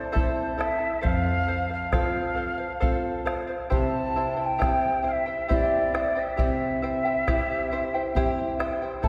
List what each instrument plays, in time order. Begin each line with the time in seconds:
Already playing: charango E4 A4 A5, quena C5
0.12 nylon-string guitar C4 E4, charango E4 A4 C5 E5 A5, bombo low
0.16 nylon-string guitar A4
0.57 charango E4 A4 E5 A5, quena E5, bombo rim
0.78 charango E4 A4 A5
1.01 nylon-string guitar F2, charango A4 C5 F5, bombo rim, bombo low
1.07 quena F5
1.27 bombo rim
1.47 charango A4 C5 F5, bombo rim
1.69 charango C5 F5, quena F5, bombo rim
1.92 nylon-string guitar C4 F4 A4, charango A4 C5 F5, bombo rim, bombo low
2.16 bombo rim
2.35 charango A4 C5 F5
2.58 charango C5 F5
2.80 nylon-string guitar C4 F4 A4, charango A4 C5 F5, bombo rim, bombo low
3.05 bombo rim
3.25 charango A4 C5 F5, bombo rim
3.47 charango C5 F5, bombo rim
3.70 nylon-string guitar C3, charango E4 G4 C5 E5 G5, quena A5, bombo low
3.94 bombo rim
4.16 charango E4 C5 E5 G5, bombo rim
4.36 charango E4 C5 G5, bombo rim
4.40 quena A5
4.45 quena G5
4.58 nylon-string guitar C4, charango E4 G4 C5 E5 G5, bombo rim, bombo low
4.63 nylon-string guitar E4 G4
4.85 bombo rim
5.03 charango E4 C5 E5 G5
5.07 quena F5
5.11 quena E5
5.26 charango E4 C5 G5
5.48 nylon-string guitar C4 E4 G4, charango E4 G4 C5 E5 G5, bombo low
5.53 quena D5
5.94 charango E4 C5 E5 G5, bombo rim
6.15 charango E4 C5 G5, quena E5
6.37 nylon-string guitar C3, charango E4 G4 C5 E5 G5, bombo low
6.42 quena E5
6.62 bombo rim
6.82 charango E4 C5 E5 G5, bombo rim
7.04 charango E4 C5 G5, bombo rim
7.27 nylon-string guitar C4 E4 G4, charango E4 G4 C5 E5 G5, bombo rim, bombo low
7.51 bombo rim
7.72 charango E4 C5 E5 G5
7.94 charango E4 C5 G5
8.15 nylon-string guitar C4 E4 G4, charango E4 G4 C5 E5 G5, bombo low
8.59 charango E4 C5 E5 G5, bombo rim
8.82 charango E4 C5 G5
9.02 nylon-string guitar A2, charango E4 A4 C5 E5 A5, quena E5, bombo low